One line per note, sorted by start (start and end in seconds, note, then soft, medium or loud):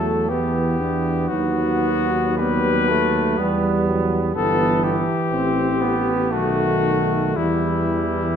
0.00 1.26 E2 soft
0.00 0.31 F#3 soft
0.00 0.31 A3 soft
0.00 0.32 A3 soft
0.00 0.30 A4 medium
0.29 0.79 E3 soft
0.29 1.30 B3 soft
0.29 0.82 B3 soft
0.29 1.30 G4 soft
0.80 1.31 E3 soft
0.80 1.32 D4 soft
1.28 3.35 D#2 soft
1.28 3.41 F#3 soft
1.28 2.40 B3 soft
1.28 2.39 D#4 soft
1.28 2.37 F#4 medium
2.38 2.90 G3 soft
2.38 2.92 B3 soft
2.38 3.84 B4 medium
2.88 3.39 A3 soft
2.88 3.41 A3 soft
3.38 4.33 E2 soft
3.38 4.36 G3 soft
3.38 3.90 G3 soft
3.38 4.34 B3 soft
3.88 4.22 F#3 soft
4.35 5.04 G1 medium
4.35 6.02 E3 soft
4.35 5.03 B3 soft
4.35 5.04 B3 medium
4.35 4.85 A4 medium
4.84 6.35 G4 medium
5.31 6.34 A1 soft
5.31 5.82 C4 soft
5.31 5.84 C4 medium
5.81 6.33 B3 medium
5.81 6.35 B3 soft
6.31 7.36 B1 soft
6.31 7.33 D#3 soft
6.31 7.34 A3 soft
6.31 7.39 A3 soft
6.31 7.38 F#4 medium
7.34 8.36 E2 soft
7.34 8.36 E3 soft
7.34 8.36 G3 soft
7.34 8.33 G3 soft
7.34 8.36 E4 medium